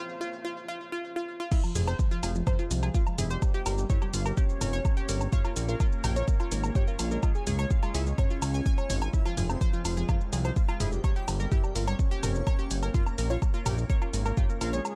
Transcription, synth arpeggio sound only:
0.21 0.24 F4 loud
0.45 0.47 F4 loud
0.68 0.71 F4 loud
0.92 0.95 F4 loud
1.16 1.19 F4 loud
1.40 1.43 F4 loud
1.52 1.56 F4 medium
1.75 1.80 G#4 medium
1.88 1.92 C5 loud
2.11 2.14 F4 loud
2.23 2.30 G#4 medium
2.47 2.50 C5 loud
2.59 2.66 F4 medium
2.83 2.90 G#4 medium
2.94 2.99 F4 medium
3.18 3.23 G#4 medium
3.30 3.35 C5 loud
3.54 3.57 G4 loud
3.66 3.73 A#4 medium
3.90 3.93 C#5 loud
4.02 4.09 G4 medium
4.26 4.33 A#4 medium
4.37 4.42 G4 medium
4.61 4.66 A#4 medium
4.73 4.78 C#5 loud
4.97 5.00 G4 loud
5.09 5.16 A#4 medium
5.33 5.35 C#5 loud
5.45 5.52 F4 medium
5.69 5.76 A#4 medium
5.80 5.85 F4 medium
6.04 6.09 A#4 medium
6.16 6.21 C#5 loud
6.40 6.43 F4 loud
6.52 6.59 A#4 medium
6.76 6.78 C#5 loud
6.88 6.95 F4 medium
7.11 7.18 A#4 medium
7.23 7.28 F4 medium
7.47 7.52 G#4 medium
7.59 7.64 C#5 loud
7.83 7.86 F4 loud
7.95 8.02 G#4 medium
8.18 8.21 C#5 loud
8.30 8.37 F4 medium
8.54 8.61 G#5 medium
8.66 8.71 G#5 loud
8.78 8.83 C#5 medium
8.90 8.97 C#5 medium
9.02 9.05 G#5 medium
9.26 9.28 F4 loud
9.37 9.45 G#4 medium
9.61 9.64 C5 loud
9.73 9.80 F4 medium
9.97 10.04 G#4 medium
10.09 10.14 F4 medium
10.33 10.37 G#4 medium
10.45 10.49 C5 loud
10.68 10.71 F4 loud
10.80 10.88 G#4 medium
11.04 11.07 C#5 loud
11.16 11.23 G4 medium
11.40 11.47 A#4 medium
11.52 11.56 G4 medium
11.75 11.80 A#4 medium
11.87 11.92 C#5 loud
12.11 12.14 G4 loud
12.23 12.30 A#4 medium
12.47 12.50 C#5 loud
12.59 12.66 G4 medium
12.83 12.90 A#4 medium
12.94 12.99 F4 medium
13.18 13.23 A#4 medium
13.30 13.35 C#5 loud
13.54 13.57 F4 loud
13.66 13.73 A#4 medium
13.90 13.93 C#5 loud
14.02 14.09 F4 medium
14.26 14.33 A#4 medium
14.37 14.42 F4 medium
14.61 14.66 A#4 medium
14.73 14.78 C#5 loud

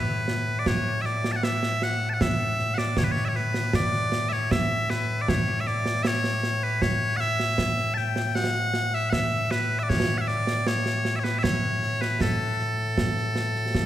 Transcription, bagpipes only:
0.00 13.86 A2 medium
0.00 0.59 B4 loud
0.59 0.67 D5 medium
0.67 1.02 C#5 medium
1.01 1.06 E5 medium
1.06 1.32 D5 medium
1.32 1.36 A5 medium
1.36 1.44 F#5 medium
1.44 1.83 E5 medium
1.83 2.09 F#5 medium
2.09 2.14 A5 medium
2.14 2.21 F#5 medium
2.21 2.74 E5 loud
2.74 2.98 D5 medium
2.74 2.78 F#5 medium
2.98 3.04 C#5 medium
3.04 3.12 B4 medium
3.12 3.25 C#5 medium
3.25 3.36 C#5 medium
3.25 3.29 E5 medium
3.36 3.75 B4 medium
3.75 4.29 D5 loud
4.29 4.51 C#5 medium
4.29 4.33 E5 medium
4.51 4.90 E5 medium
4.90 5.22 B4 medium
5.22 5.29 D5 medium
5.29 5.60 C#5 medium
5.60 5.67 E5 medium
5.67 6.03 D5 medium
6.03 6.07 E5 loud
6.07 6.63 C#5 loud
6.63 6.82 B4 medium
6.82 7.17 C#5 medium
7.17 7.94 E5 loud
7.17 7.20 F#5 loud
7.94 8.35 G5 medium
7.94 7.98 A5 medium
8.35 8.94 F#5 loud
8.94 9.10 E5 medium
9.10 9.51 E5 loud
9.10 9.13 F#5 loud
9.51 9.79 B4 loud
9.79 9.83 E5 medium
9.83 9.89 D5 medium
9.89 10.18 C#5 loud
10.18 10.28 E5 medium
10.18 10.21 F#5 medium
10.28 10.67 D5 medium
10.67 11.16 C#5 medium
11.16 11.24 C#5 medium
11.16 11.19 E5 medium
11.24 11.39 B4 medium
11.39 11.43 E5 medium
11.43 12.01 C#5 medium
12.01 12.21 B4 medium
12.21 13.86 A4 medium

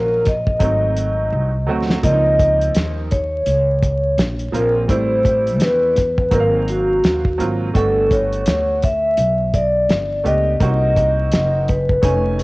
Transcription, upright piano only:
0.00 0.23 F#3 medium
0.00 0.23 A#3 medium
0.00 0.23 C#4 medium
0.00 0.24 F4 medium
0.59 1.49 F#3 medium
0.59 1.49 A3 medium
0.59 1.49 C4 medium
0.59 1.50 D#4 medium
1.67 1.95 F#3 medium
1.67 1.96 A3 medium
1.67 1.96 C4 medium
1.67 1.97 F#4 medium
2.03 3.08 F3 medium
2.03 3.09 A#3 medium
2.03 3.09 C4 medium
2.03 2.12 D4 medium
2.12 3.13 D#4 medium
4.52 4.81 F3 medium
4.52 4.81 A#3 medium
4.52 4.82 C4 medium
4.52 4.82 F4 medium
4.88 5.94 G3 medium
4.88 5.94 A3 medium
4.88 5.95 C4 medium
4.88 5.95 E4 medium
6.31 7.20 F#3 medium
6.31 7.20 A#3 medium
6.31 7.21 C4 medium
6.31 6.40 D#4 medium
6.40 7.24 F5 medium
7.38 7.67 F#3 medium
7.38 7.67 A#3 medium
7.38 7.67 C4 medium
7.38 7.68 F4 medium
7.73 8.79 A3 medium
7.73 8.80 B3 medium
7.73 8.80 D4 medium
7.73 8.80 F#4 medium
10.24 10.52 A3 medium
10.24 10.53 B3 medium
10.24 10.53 D4 medium
10.24 10.53 G4 medium
10.60 11.65 A#3 medium
10.60 11.66 C4 medium
10.60 10.69 C#4 medium
10.60 11.67 F#4 medium
10.68 11.69 D#4 medium
12.02 12.43 A3 medium
12.02 12.43 C#4 medium
12.02 12.43 D#4 medium
12.02 12.43 G#5 medium

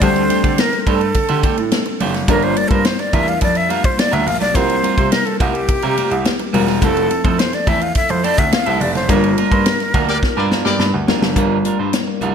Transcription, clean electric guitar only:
0.01 0.21 A3 medium
0.01 0.22 D4 medium
0.01 0.22 G4 loud
0.01 0.22 C5 loud
0.29 0.44 A3 medium
0.29 0.43 D4 medium
0.29 0.43 G4 medium
0.29 0.43 C5 medium
0.44 0.60 A3 medium
0.44 0.60 D4 medium
0.44 0.60 G4 medium
0.44 0.60 D5 medium
0.72 muted clean electric guitar stroke soft
0.87 1.07 A3 medium
0.87 1.01 D4 medium
0.87 1.00 G4 medium
0.87 1.00 C5 medium
1.01 muted clean electric guitar stroke soft
1.15 muted clean electric guitar stroke soft
1.29 1.42 A3 medium
1.29 1.42 D4 medium
1.29 1.43 G4 medium
1.29 1.43 C5 medium
1.43 1.59 A3 medium
1.43 1.58 D4 medium
1.43 1.57 G4 medium
1.43 1.57 C5 medium
1.58 muted clean electric guitar stroke medium
1.72 muted clean electric guitar stroke soft
1.86 muted clean electric guitar stroke soft
2.00 2.20 A3 medium
2.00 2.14 D4 medium
2.00 2.14 G4 medium
2.00 2.13 C5 medium
2.14 muted clean electric guitar stroke soft
2.29 2.54 G3 medium
2.29 2.55 D4 loud
2.29 2.55 F4 loud
2.29 2.55 A#4 loud
2.56 muted clean electric guitar stroke soft
2.71 2.87 G3 soft
2.71 2.87 D4 soft
2.71 2.87 F4 medium
2.71 2.87 C5 medium
3.00 muted clean electric guitar stroke medium
3.13 3.33 G3 medium
3.13 3.27 D4 loud
3.13 3.27 F4 medium
3.13 3.26 A#4 medium
3.28 muted clean electric guitar stroke soft
3.56 muted clean electric guitar stroke soft
3.69 3.90 G3 medium
3.69 3.83 D4 medium
3.69 3.83 F4 medium
3.69 3.82 A#4 medium
3.84 muted clean electric guitar stroke soft
3.98 muted clean electric guitar stroke soft
4.12 4.25 G3 medium
4.12 4.25 D4 medium
4.12 4.26 F4 medium
4.12 4.26 A#4 medium
4.26 muted clean electric guitar stroke soft
4.41 muted clean electric guitar stroke medium
4.54 4.75 G3 medium
4.54 4.75 C4 loud
4.54 4.75 F4 loud
4.54 4.75 A#4 loud
4.83 4.98 G3 medium
4.83 4.97 C4 medium
4.83 4.97 F4 medium
4.83 4.97 A#4 medium
4.97 5.14 G3 medium
4.97 5.14 C4 medium
4.97 5.13 F4 medium
4.97 5.13 C5 medium
5.26 muted clean electric guitar stroke soft
5.40 5.60 G3 medium
5.40 5.54 C4 medium
5.40 5.54 F4 medium
5.40 5.53 A#4 loud
5.54 muted clean electric guitar stroke soft
5.69 muted clean electric guitar stroke soft
5.83 5.96 G3 medium
5.83 5.96 C4 medium
5.83 5.97 F4 medium
5.83 5.97 A#4 medium
5.97 6.13 G3 medium
5.97 6.11 C4 medium
5.97 6.10 F4 medium
5.97 6.10 A#4 medium
6.11 muted clean electric guitar stroke medium
6.25 muted clean electric guitar stroke medium
6.40 muted clean electric guitar stroke soft
6.53 6.68 G3 loud
6.53 6.68 C4 medium
6.53 6.67 F4 medium
6.53 6.66 A#4 medium
6.68 6.81 G3 soft
6.68 6.81 C4 medium
6.68 6.82 F4 medium
6.68 6.83 A#4 medium
6.82 7.08 A3 medium
6.82 7.08 C4 loud
6.82 7.08 E4 medium
6.82 7.09 A4 medium
7.10 muted clean electric guitar stroke soft
7.24 7.41 A3 soft
7.24 7.40 C4 medium
7.24 7.40 E4 medium
7.24 7.40 C5 medium
7.53 muted clean electric guitar stroke medium
7.67 7.87 A3 loud
7.67 7.82 C4 loud
7.67 7.81 E4 loud
7.67 7.81 A4 loud
7.82 muted clean electric guitar stroke soft
8.10 muted clean electric guitar stroke medium
8.24 8.44 A3 medium
8.24 8.38 C4 medium
8.24 8.37 E4 medium
8.24 8.37 A4 medium
8.38 muted clean electric guitar stroke medium
8.52 muted clean electric guitar stroke soft
8.66 8.80 A3 medium
8.66 8.80 C4 medium
8.66 8.80 E4 medium
8.66 8.81 A4 medium
8.81 muted clean electric guitar stroke soft
8.95 muted clean electric guitar stroke soft
9.10 9.29 A#3 medium
9.10 9.29 D4 medium
9.10 9.30 F4 loud
9.10 9.30 A#4 medium
9.38 9.52 A#3 medium
9.38 9.52 D4 medium
9.38 9.51 F4 medium
9.38 9.52 A#4 medium
9.52 9.68 A#3 medium
9.52 9.68 D4 medium
9.52 9.68 F4 medium
9.52 9.67 C5 medium
9.80 muted clean electric guitar stroke medium
9.94 10.14 A#3 loud
9.94 10.08 D4 medium
9.94 10.08 F4 medium
9.94 10.07 A#4 loud
10.08 muted clean electric guitar stroke soft
10.23 muted clean electric guitar stroke soft
10.37 10.49 A#3 medium
10.37 10.50 D4 medium
10.37 10.50 F4 medium
10.37 10.51 A#4 medium
10.50 10.66 A#3 medium
10.50 10.65 D4 medium
10.50 10.65 F4 medium
10.50 10.64 A#4 medium
10.65 muted clean electric guitar stroke soft
10.79 muted clean electric guitar stroke soft
10.94 muted clean electric guitar stroke medium
11.08 11.28 A#3 medium
11.08 11.22 D4 medium
11.08 11.22 F4 medium
11.08 11.21 A#4 medium
11.22 muted clean electric guitar stroke soft
11.37 11.56 G3 medium
11.37 11.56 D4 loud
11.37 11.57 F4 medium
11.37 11.57 A#4 loud
11.65 11.80 G3 medium
11.65 11.79 D4 medium
11.65 11.79 F4 medium
11.65 11.79 A#4 medium
11.79 11.95 G3 soft
11.79 11.95 D4 medium
11.79 11.95 F4 medium
11.79 11.95 C5 medium
12.07 muted clean electric guitar stroke soft
12.21 12.35 G3 medium
12.21 12.35 D4 loud
12.21 12.35 F4 loud
12.21 12.35 A#4 loud

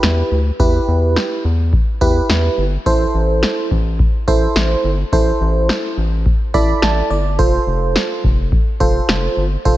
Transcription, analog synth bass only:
0.03 0.23 E2 loud
0.31 0.51 D2 medium
0.60 0.79 E2 loud
0.88 1.18 E2 loud
1.45 1.74 E2 loud
2.01 2.21 E2 loud
2.29 2.49 E2 loud
2.58 2.78 G1 medium
2.86 3.06 A1 loud
3.14 3.44 A1 loud
3.71 4.01 A1 loud
4.28 4.47 A1 loud
4.56 4.76 A1 loud
4.84 5.04 G1 medium
5.12 5.32 A1 loud
5.41 5.71 A1 loud
5.97 6.27 A1 medium
6.54 6.74 A1 medium
6.82 7.02 A1 loud
7.10 7.40 G1 medium
7.39 7.59 F1 loud
7.67 7.97 F1 loud
8.24 8.54 F1 loud
8.80 9.00 F1 loud
9.09 9.29 F1 loud
9.37 9.57 G1 medium
9.65 9.77 F1 loud

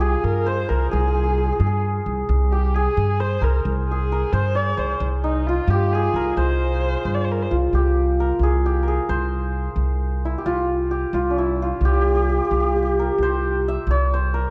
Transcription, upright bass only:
0.00 0.14 C2 medium
0.24 0.63 G2 medium
0.70 0.89 C2 medium
0.93 1.50 C2 medium
1.60 1.99 G2 medium
2.06 2.25 C2 medium
2.29 2.86 C2 medium
2.97 3.35 G2 medium
3.41 3.61 C2 medium
3.65 4.22 C2 medium
4.33 4.71 G2 loud
4.78 4.97 C2 medium
5.00 5.58 C2 loud
5.68 6.06 G2 loud
6.14 6.33 C2 medium
6.37 6.94 C2 medium
7.05 7.43 G2 medium
7.51 7.70 C2 medium
7.73 8.30 C2 medium
8.39 8.97 C2 medium
9.09 9.67 C2 medium
9.76 10.34 C2 medium
10.46 11.03 C2 medium
11.13 11.71 C2 medium
11.81 12.39 C2 medium
12.51 13.08 C2 medium
13.18 13.76 C2 medium
13.87 14.44 C2 medium

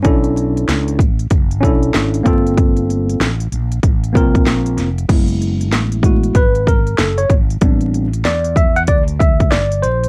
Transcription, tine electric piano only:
0.03 0.99 C#4 medium
0.03 0.99 D4 medium
0.03 1.00 E4 medium
0.03 1.00 A4 medium
1.61 2.25 C#4 medium
1.61 2.26 D4 medium
1.61 2.26 E4 medium
1.65 2.26 A4 medium
2.23 3.27 A#3 medium
2.23 3.28 C4 medium
2.23 3.28 F4 medium
2.27 3.29 A4 medium
4.13 4.87 A#3 medium
4.13 4.87 C4 medium
4.13 4.88 F4 medium
4.17 4.89 A#4 medium
5.09 7.58 F#3 soft
5.09 6.02 G#3 medium
5.09 6.02 B3 soft
5.09 6.03 E4 medium
6.03 6.32 G#3 soft
6.03 6.32 A3 soft
6.03 6.33 B3 soft
6.03 6.33 E4 medium
6.03 6.38 F#4 medium
6.36 6.66 B4 medium
6.68 7.01 A#4 medium
6.98 7.19 A4 medium
7.18 7.32 C#5 medium
7.61 8.06 G3 medium
7.61 8.07 B3 soft
7.61 8.07 C4 soft
7.61 8.07 D4 medium
8.25 8.55 D5 medium
8.57 8.77 E5 medium
8.76 8.82 F#5 loud
8.88 9.03 D5 loud
9.20 9.53 E5 medium
9.51 9.84 D5 medium
9.82 10.09 C5 medium

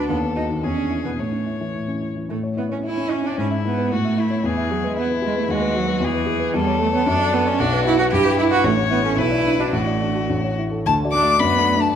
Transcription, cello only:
0.09 0.17 B3 medium
0.36 0.44 D#4 medium
0.63 1.04 C#4 medium
1.05 1.10 B3 soft
1.19 1.73 A3 soft
2.30 2.38 A3 medium
2.58 2.63 B3 medium
2.72 2.77 C#4 medium
2.85 3.13 E4 medium
3.11 3.28 C#4 medium
3.26 3.38 D4 medium
3.39 3.47 C#4 medium
3.66 3.93 B3 medium
3.92 4.45 A3 medium
4.46 4.72 E3 medium
4.71 4.87 F#3 medium
4.85 4.98 G#3 medium
4.99 5.07 B3 medium
5.25 5.37 G#3 medium
5.38 5.43 A3 medium
5.50 5.78 G#3 medium
5.76 6.05 F#3 medium
6.03 6.57 E3 medium
6.55 6.81 G3 medium
6.81 6.87 A3 medium
6.95 7.08 B3 medium
7.08 7.35 D4 loud
7.34 7.48 B3 medium
7.47 7.61 C#4 medium
7.59 7.85 D4 loud
7.85 7.98 E4 loud
7.99 8.04 F#4 medium
8.11 8.37 G4 loud
8.38 8.44 E4 loud
8.51 8.64 F#4 loud
8.65 8.73 A3 loud
8.90 9.04 B3 medium
9.05 9.17 C#4 medium
9.18 9.61 E4 loud
9.60 9.75 D4 medium
9.74 10.58 A3 medium
10.86 10.94 A3 medium
11.13 11.40 D4 medium
11.40 11.80 B3 medium
11.81 11.87 A3 medium

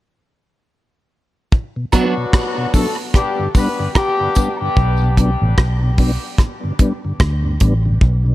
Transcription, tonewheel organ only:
1.76 1.85 B2 medium
1.93 2.06 F#3 medium
1.93 2.06 B3 medium
1.93 2.06 D4 medium
2.17 2.26 B2 medium
2.58 2.67 B2 medium
2.74 2.87 F#3 medium
2.74 2.87 B3 medium
2.74 2.87 D4 medium
3.39 3.48 G2 medium
3.39 3.48 D3 medium
3.56 3.68 G3 medium
3.56 3.68 B3 medium
3.56 3.69 D4 medium
3.80 3.88 G2 medium
3.80 3.88 D3 medium
4.20 4.29 G2 medium
4.20 4.29 D3 medium
4.36 4.49 G3 medium
4.36 4.49 B3 medium
4.36 4.50 D4 medium
4.61 4.70 G2 medium
4.61 4.70 D3 medium
5.02 5.10 B2 medium
5.18 5.31 F#3 medium
5.18 5.31 B3 medium
5.18 5.31 D4 medium
5.42 5.51 B2 medium
5.83 5.91 B2 medium
5.99 6.11 F#3 medium
5.99 6.12 B3 medium
5.99 6.12 D4 medium
6.64 6.72 G2 medium
6.64 6.72 D3 medium
6.80 6.93 G3 medium
6.80 6.93 B3 medium
6.80 6.93 D4 medium
7.04 7.13 G2 medium
7.04 7.13 D3 medium
7.45 7.53 G2 medium
7.45 7.53 D3 medium
7.61 7.74 G3 medium
7.61 7.74 B3 medium
7.61 7.74 D4 medium
7.86 7.94 G2 medium
7.86 7.94 D3 medium
8.26 8.35 B2 medium

